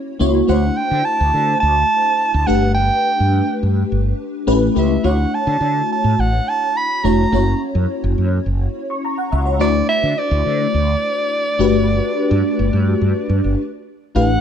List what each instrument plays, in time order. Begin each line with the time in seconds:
Already playing: fm electric piano A#3 C#4 E4 F#4 C#5
0.19 fretless electric bass C#2, fm electric piano A#3 C#4 E4 F#4 C#5
0.47 fretless electric bass D2, fm electric piano A3 D4 E4 F#4 C5, soprano saxophone F#5
0.77 soprano saxophone G5
0.91 fretless electric bass D3
1.05 soprano saxophone A5
1.20 fretless electric bass D2
1.34 fretless electric bass D3
1.60 fretless electric bass D2, soprano saxophone A5
2.34 fretless electric bass D2
2.47 fretless electric bass G1, fm electric piano A3 D4 G4 B4, soprano saxophone F#5
2.75 soprano saxophone G5
3.20 fretless electric bass G2
3.63 fretless electric bass G2
3.92 fretless electric bass G1
4.47 fretless electric bass A1, fm electric piano A3 C#4 E4 G4 B4
4.75 fretless electric bass C#2, fm electric piano A3 C#4 E4 G4 B4, soprano saxophone E5
5.03 fretless electric bass D2, fm electric piano A3 D4 E4 F#4 C#5, soprano saxophone F#5
5.35 soprano saxophone A5
5.47 fretless electric bass D3
5.61 fretless electric bass D3
5.92 soprano saxophone A5
6.04 fretless electric bass A2
6.19 fretless electric bass A1, soprano saxophone F#5
6.49 soprano saxophone A5
6.77 soprano saxophone B5
7.04 fretless electric bass F1, fm electric piano A3 D4 E4 F#4 C#5, soprano saxophone A#5
7.32 fretless electric bass F#1, fm electric piano A#3 C#4 E4 F#4 C#5
7.75 fretless electric bass F#2
8.04 fretless electric bass F#1
8.18 fretless electric bass F#2
8.46 fretless electric bass F#1
8.90 fm electric piano C#6
9.05 fm electric piano A#5
9.18 fm electric piano F#5
9.32 fretless electric bass C#2, fm electric piano E5
9.46 fm electric piano C#5
9.59 fretless electric bass D2, fm electric piano A3 D4 E4 F#4 C5, soprano saxophone D5
9.89 soprano saxophone E5
10.03 fretless electric bass D3
10.18 soprano saxophone D5
10.31 fretless electric bass D2
10.46 fretless electric bass D3
10.74 fretless electric bass D2
11.59 fretless electric bass G1, fm electric piano A3 D4 F#4 G4 B4
12.31 fretless electric bass G2
12.59 fretless electric bass G1
12.73 fretless electric bass G2
13.01 fretless electric bass G2
13.29 fretless electric bass G2
13.44 fretless electric bass G1
14.15 fretless electric bass A1, fm electric piano A3 D4 E4 G4 B4, soprano saxophone F#5